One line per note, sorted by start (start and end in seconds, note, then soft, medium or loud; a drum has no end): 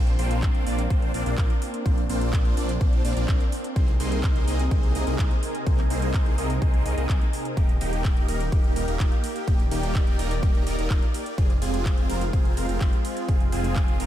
0.00 0.17 A#1 medium
0.00 3.72 A#3 medium
0.00 7.53 C4 medium
0.00 3.72 D4 medium
0.07 closed hi-hat soft
0.19 0.64 A#1 loud
0.19 0.64 A#3 loud
0.19 0.64 C4 medium
0.19 0.64 D4 medium
0.19 0.64 F4 medium
0.19 0.64 C5 loud
0.19 open hi-hat loud
0.31 closed hi-hat medium
0.43 kick loud
0.43 clap loud
0.43 closed hi-hat medium
0.55 closed hi-hat soft
0.67 0.88 A#1 loud
0.67 0.81 A#3 medium
0.67 0.81 C4 medium
0.67 0.81 D4 medium
0.67 0.81 F4 medium
0.67 0.81 D5 loud
0.67 open hi-hat loud
0.79 closed hi-hat medium
0.90 1.12 A#1 loud
0.90 1.11 A#3 medium
0.90 1.11 C4 medium
0.90 1.11 D4 medium
0.90 1.11 F4 medium
0.90 1.11 C5 loud
0.90 kick loud
0.90 closed hi-hat medium
1.02 closed hi-hat soft
1.14 1.24 A#1 loud
1.14 1.23 A#3 medium
1.14 1.23 C4 medium
1.14 1.23 D4 medium
1.14 1.23 F4 medium
1.14 1.23 D5 loud
1.14 open hi-hat loud
1.26 1.36 A#1 loud
1.26 1.35 A#3 medium
1.26 1.35 C4 medium
1.26 1.35 D4 medium
1.26 1.35 F4 medium
1.26 1.35 D5 medium
1.26 closed hi-hat medium
1.38 1.50 A#1 loud
1.38 1.53 A#3 medium
1.38 1.53 C4 medium
1.38 1.53 D4 medium
1.38 1.53 F4 medium
1.38 1.53 A#4 medium
1.38 kick loud
1.38 clap loud
1.38 closed hi-hat medium
1.50 closed hi-hat soft
1.62 open hi-hat loud
1.74 closed hi-hat medium
1.86 2.07 A#1 medium
1.86 2.00 A#3 loud
1.86 2.00 C4 medium
1.86 2.00 D4 medium
1.86 2.00 F4 medium
1.86 2.00 C5 loud
1.86 kick loud
1.86 closed hi-hat medium
1.98 closed hi-hat soft
2.09 2.55 A#1 loud
2.09 2.54 A#3 medium
2.09 2.54 C4 medium
2.09 2.54 D4 medium
2.09 2.54 F4 medium
2.09 2.54 C5 loud
2.09 open hi-hat loud
2.21 closed hi-hat medium
2.33 kick loud
2.33 clap loud
2.33 closed hi-hat medium
2.45 closed hi-hat soft
2.57 2.79 A#1 loud
2.57 2.72 A#3 medium
2.57 2.72 C4 medium
2.57 2.72 D4 medium
2.57 2.72 F4 medium
2.57 2.72 D5 loud
2.57 open hi-hat loud
2.69 closed hi-hat medium
2.81 3.02 A#1 loud
2.81 3.02 A#3 medium
2.81 3.02 C4 medium
2.81 3.02 D4 medium
2.81 3.02 F4 medium
2.81 3.02 C5 loud
2.81 kick loud
2.81 closed hi-hat medium
2.93 closed hi-hat soft
3.05 3.14 A#1 loud
3.05 3.14 A#3 medium
3.05 3.14 C4 medium
3.05 3.14 D4 medium
3.05 3.14 F4 medium
3.05 3.14 D5 loud
3.05 open hi-hat loud
3.17 3.26 A#1 medium
3.17 3.26 A#3 medium
3.17 3.26 C4 medium
3.17 3.26 D4 medium
3.17 3.26 F4 medium
3.17 3.26 D5 medium
3.17 closed hi-hat medium
3.28 3.41 A#1 loud
3.28 3.43 A#3 medium
3.28 3.43 C4 medium
3.28 3.43 D4 medium
3.28 3.43 F4 medium
3.28 3.43 A#4 medium
3.28 kick loud
3.28 clap loud
3.28 closed hi-hat medium
3.41 closed hi-hat soft
3.52 open hi-hat loud
3.64 closed hi-hat medium
3.76 3.98 C2 medium
3.76 7.53 C3 medium
3.76 3.91 A#3 loud
3.76 3.91 C4 medium
3.76 3.91 D#4 medium
3.76 9.44 D#4 medium
3.76 7.53 G#4 medium
3.76 3.91 G#4 medium
3.76 7.53 A#4 medium
3.76 3.91 C5 loud
3.76 kick loud
3.76 closed hi-hat medium
3.88 closed hi-hat soft
4.00 4.45 C2 medium
4.00 4.45 A#3 medium
4.00 4.45 C4 medium
4.00 4.45 D#4 medium
4.00 4.45 G#4 medium
4.00 4.45 C5 loud
4.00 open hi-hat loud
4.12 closed hi-hat medium
4.24 kick loud
4.24 clap loud
4.24 closed hi-hat medium
4.36 closed hi-hat soft
4.48 4.69 C2 loud
4.48 4.62 A#3 medium
4.48 4.62 C4 medium
4.48 4.62 D#4 medium
4.48 4.62 G#4 medium
4.48 4.62 D#5 loud
4.48 open hi-hat loud
4.59 closed hi-hat medium
4.71 4.93 C2 loud
4.71 4.92 A#3 medium
4.71 4.92 C4 medium
4.71 4.92 D#4 medium
4.71 4.92 G#4 medium
4.71 4.92 C5 loud
4.71 kick loud
4.71 closed hi-hat medium
4.83 closed hi-hat soft
4.95 5.05 C2 loud
4.95 5.04 A#3 loud
4.95 5.04 C4 medium
4.95 5.04 D#4 medium
4.95 5.04 G#4 medium
4.95 5.04 D#5 loud
4.95 open hi-hat loud
5.07 5.17 C2 medium
5.07 5.16 A#3 medium
5.07 5.16 C4 medium
5.07 5.16 D#4 medium
5.07 5.16 G#4 medium
5.07 5.16 D#5 medium
5.07 closed hi-hat medium
5.19 5.31 C2 loud
5.19 5.34 A#3 medium
5.19 5.34 C4 medium
5.19 5.34 D#4 medium
5.19 5.34 G#4 medium
5.19 5.34 A#4 medium
5.19 kick loud
5.19 clap loud
5.19 closed hi-hat medium
5.31 closed hi-hat soft
5.43 open hi-hat loud
5.55 closed hi-hat medium
5.67 5.88 C2 medium
5.67 5.81 A#3 loud
5.67 5.81 C4 medium
5.67 5.81 D#4 medium
5.67 5.81 G#4 medium
5.67 5.81 C5 loud
5.67 kick loud
5.67 closed hi-hat medium
5.78 clap soft
5.78 closed hi-hat soft
5.90 6.36 C2 loud
5.90 6.35 A#3 medium
5.90 6.35 C4 medium
5.90 6.35 D#4 medium
5.90 6.35 G#4 medium
5.90 6.35 C5 loud
5.90 open hi-hat loud
6.02 closed hi-hat medium
6.14 kick loud
6.14 clap loud
6.14 closed hi-hat soft
6.26 closed hi-hat soft
6.38 6.59 C2 loud
6.38 6.53 A#3 medium
6.38 6.53 C4 medium
6.38 6.53 D#4 medium
6.38 6.53 G#4 medium
6.38 6.53 D#5 loud
6.38 open hi-hat loud
6.50 closed hi-hat medium
6.62 6.83 C2 loud
6.62 6.83 A#3 medium
6.62 6.83 C4 medium
6.62 6.83 D#4 medium
6.62 6.83 G#4 medium
6.62 6.83 C5 loud
6.62 kick loud
6.62 closed hi-hat soft
6.74 closed hi-hat soft
6.86 6.95 C2 loud
6.86 6.95 A#3 loud
6.86 6.95 C4 medium
6.86 6.95 D#4 medium
6.86 6.95 G#4 medium
6.86 6.95 D#5 loud
6.86 open hi-hat loud
6.98 7.07 C2 medium
6.98 7.07 A#3 medium
6.98 7.07 C4 medium
6.98 7.07 D#4 medium
6.98 7.07 G#4 medium
6.98 7.07 D#5 medium
6.98 closed hi-hat soft
7.09 7.22 C2 loud
7.09 7.24 A#3 medium
7.09 7.24 C4 medium
7.09 7.24 D#4 medium
7.09 7.24 G#4 medium
7.09 7.24 A#4 medium
7.09 kick loud
7.09 clap loud
7.09 closed hi-hat soft
7.21 closed hi-hat soft
7.33 open hi-hat loud
7.45 closed hi-hat medium
7.57 7.79 D#1 medium
7.57 7.72 A#3 loud
7.57 11.34 A#3 medium
7.57 7.72 D#4 medium
7.57 7.72 G4 loud
7.57 11.34 G4 medium
7.57 kick loud
7.57 closed hi-hat medium
7.57 ride medium
7.69 closed hi-hat soft
7.81 8.26 D#1 loud
7.81 8.26 A#3 loud
7.81 8.26 D#4 medium
7.81 8.26 G4 loud
7.81 open hi-hat loud
7.81 ride medium
7.93 closed hi-hat medium
8.05 kick loud
8.05 clap loud
8.05 closed hi-hat medium
8.05 ride medium
8.17 closed hi-hat soft
8.28 8.50 D#1 loud
8.28 8.43 A#3 medium
8.28 8.43 D#4 medium
8.28 8.43 A#4 loud
8.28 open hi-hat loud
8.28 ride medium
8.40 closed hi-hat soft
8.52 8.74 D#1 loud
8.52 8.73 A#3 medium
8.52 8.73 D#4 medium
8.52 8.73 G4 loud
8.52 kick loud
8.52 closed hi-hat medium
8.52 ride medium
8.64 closed hi-hat soft
8.76 8.86 D#1 loud
8.76 8.85 A#3 medium
8.76 8.85 D#4 medium
8.76 8.85 A#4 loud
8.76 open hi-hat loud
8.76 ride medium
8.88 8.98 D#1 medium
8.88 8.97 A#3 medium
8.88 8.97 D#4 medium
8.88 8.97 A#4 medium
8.88 closed hi-hat medium
9.00 9.12 D#1 loud
9.00 9.15 A#3 medium
9.00 9.15 D#4 medium
9.00 9.15 F4 medium
9.00 kick loud
9.00 clap loud
9.00 closed hi-hat medium
9.00 ride medium
9.12 closed hi-hat soft
9.24 open hi-hat loud
9.24 ride medium
9.36 closed hi-hat medium
9.47 9.69 D#1 loud
9.47 9.62 A#3 loud
9.47 9.62 D#4 medium
9.47 9.62 G4 loud
9.47 11.36 D5 medium
9.47 kick loud
9.47 closed hi-hat medium
9.47 ride medium
9.60 closed hi-hat soft
9.71 10.17 D#1 loud
9.71 10.16 A#3 loud
9.71 10.16 D#4 medium
9.71 10.16 G4 loud
9.71 open hi-hat loud
9.71 ride medium
9.83 closed hi-hat medium
9.95 kick loud
9.95 clap loud
9.95 closed hi-hat medium
9.95 ride medium
10.07 closed hi-hat soft
10.19 10.40 D#1 loud
10.19 10.34 A#3 medium
10.19 10.34 D#4 medium
10.19 10.34 A#4 loud
10.19 open hi-hat loud
10.19 ride medium
10.31 closed hi-hat medium
10.43 10.64 D#1 loud
10.43 10.64 A#3 medium
10.43 10.64 D#4 medium
10.43 10.64 G4 loud
10.43 kick loud
10.43 closed hi-hat medium
10.43 ride medium
10.55 closed hi-hat soft
10.67 10.76 D#1 loud
10.67 10.76 A#3 medium
10.67 10.76 D#4 medium
10.67 10.76 A#4 loud
10.67 open hi-hat loud
10.67 ride medium
10.78 10.88 D#1 medium
10.78 10.88 A#3 medium
10.78 10.88 D#4 medium
10.78 10.88 A#4 medium
10.78 closed hi-hat medium
10.90 11.03 D#1 loud
10.90 11.05 A#3 medium
10.90 11.05 D#4 medium
10.90 11.05 F4 medium
10.90 kick loud
10.90 clap loud
10.90 closed hi-hat medium
10.90 ride medium
11.02 closed hi-hat soft
11.14 open hi-hat loud
11.14 ride medium
11.26 closed hi-hat medium
11.38 11.59 F1 loud
11.38 14.06 G#3 medium
11.38 11.53 C4 loud
11.38 14.06 C4 medium
11.38 11.53 F4 medium
11.38 14.06 F4 medium
11.38 11.53 G#4 loud
11.38 kick loud
11.38 closed hi-hat medium
11.38 ride medium
11.50 closed hi-hat soft
11.62 12.07 F1 loud
11.62 12.07 C4 medium
11.62 12.07 F4 medium
11.62 12.07 G#4 loud
11.62 open hi-hat loud
11.62 ride medium
11.74 closed hi-hat medium
11.86 kick loud
11.86 clap loud
11.86 closed hi-hat medium
11.86 ride medium
11.98 closed hi-hat soft
12.09 12.31 F1 loud
12.09 12.24 C4 loud
12.09 12.24 F4 medium
12.09 12.24 A#4 loud
12.09 open hi-hat loud
12.09 ride medium
12.21 closed hi-hat medium
12.33 12.55 F1 loud
12.33 12.54 C4 medium
12.33 12.54 F4 medium
12.33 12.54 G#4 loud
12.33 kick loud
12.33 closed hi-hat medium
12.33 ride medium
12.45 closed hi-hat soft
12.57 12.67 F1 loud
12.57 12.66 C4 loud
12.57 12.66 F4 medium
12.57 12.66 A#4 loud
12.57 open hi-hat loud
12.57 ride medium
12.69 12.79 F1 loud
12.69 12.78 C4 medium
12.69 12.78 F4 medium
12.69 12.78 A#4 medium
12.69 closed hi-hat medium
12.81 12.93 F1 loud
12.81 12.96 C4 medium
12.81 12.96 F4 medium
12.81 12.96 G4 medium
12.81 kick loud
12.81 clap loud
12.81 closed hi-hat medium
12.81 ride medium
12.93 closed hi-hat soft
13.05 open hi-hat loud
13.05 ride medium
13.17 closed hi-hat medium
13.29 13.50 F1 loud
13.29 13.43 C4 loud
13.29 13.43 F4 medium
13.29 13.43 G#4 loud
13.29 kick loud
13.29 closed hi-hat medium
13.29 ride medium
13.41 closed hi-hat soft
13.52 13.98 F1 loud
13.52 13.97 C4 loud
13.52 13.97 F4 medium
13.52 13.97 G#4 loud
13.52 open hi-hat loud
13.52 ride medium
13.64 closed hi-hat medium
13.76 kick loud
13.76 clap loud
13.76 closed hi-hat medium
13.76 ride medium
13.88 closed hi-hat soft
14.00 14.06 F1 loud
14.00 14.06 C4 loud
14.00 14.06 F4 medium
14.00 14.06 A#4 loud
14.00 open hi-hat loud
14.00 ride medium